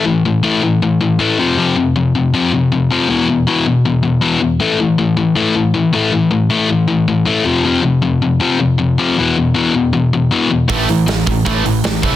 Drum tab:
HH |--------|--------|--------|--------|
SD |--------|--------|--------|--------|
BD |--------|--------|--------|--------|

HH |--------|--------|--------|oooo-ooo|
SD |--------|--------|--------|--o---o-|
BD |--------|--------|--------|o--oo--o|